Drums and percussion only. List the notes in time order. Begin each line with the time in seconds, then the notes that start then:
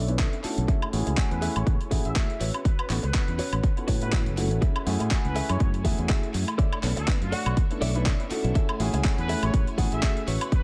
0.08 closed hi-hat
0.19 kick, clap, closed hi-hat
0.33 closed hi-hat
0.44 open hi-hat
0.58 closed hi-hat
0.68 kick, closed hi-hat
0.82 high woodblock
0.93 open hi-hat
1.07 closed hi-hat
1.17 kick, clap, closed hi-hat
1.31 closed hi-hat
1.42 open hi-hat
1.56 closed hi-hat, high woodblock
1.67 kick, closed hi-hat
1.81 closed hi-hat
1.91 kick, open hi-hat
2.05 closed hi-hat
2.16 kick, clap, closed hi-hat
2.30 closed hi-hat
2.41 open hi-hat
2.54 closed hi-hat, high woodblock
2.65 kick, closed hi-hat
2.79 high woodblock
2.90 clap, open hi-hat
3.04 closed hi-hat
3.14 kick, clap, closed hi-hat
3.28 closed hi-hat
3.39 open hi-hat
3.53 closed hi-hat, high woodblock
3.64 kick, closed hi-hat
3.77 closed hi-hat
3.88 kick, open hi-hat
4.02 closed hi-hat
4.13 kick, clap, closed hi-hat
4.26 closed hi-hat
4.37 open hi-hat
4.51 closed hi-hat
4.62 kick, closed hi-hat
4.76 high woodblock
4.87 open hi-hat
5.00 closed hi-hat
5.11 kick, clap, closed hi-hat
5.25 closed hi-hat
5.36 open hi-hat
5.49 closed hi-hat, high woodblock
5.60 kick, closed hi-hat
5.74 closed hi-hat
5.85 kick, open hi-hat
5.99 closed hi-hat
6.09 kick, clap, closed hi-hat
6.23 closed hi-hat
6.34 open hi-hat
6.48 closed hi-hat, high woodblock
6.59 kick, closed hi-hat
6.73 high woodblock
6.83 clap, open hi-hat
6.97 closed hi-hat
7.08 kick, clap, closed hi-hat
7.22 closed hi-hat
7.32 open hi-hat
7.46 closed hi-hat, high woodblock
7.57 kick, closed hi-hat
7.71 closed hi-hat
7.82 open hi-hat
7.95 closed hi-hat
8.06 kick, clap, closed hi-hat
8.20 closed hi-hat
8.31 open hi-hat
8.44 closed hi-hat
8.55 kick, closed hi-hat
8.69 high woodblock
8.80 open hi-hat
8.94 closed hi-hat
9.04 kick, clap, closed hi-hat
9.18 closed hi-hat
9.29 open hi-hat
9.43 closed hi-hat, high woodblock
9.54 kick, closed hi-hat
9.67 closed hi-hat
9.78 kick, open hi-hat
9.92 closed hi-hat
10.03 kick, clap, closed hi-hat
10.17 closed hi-hat
10.28 open hi-hat
10.41 closed hi-hat, high woodblock
10.52 kick, closed hi-hat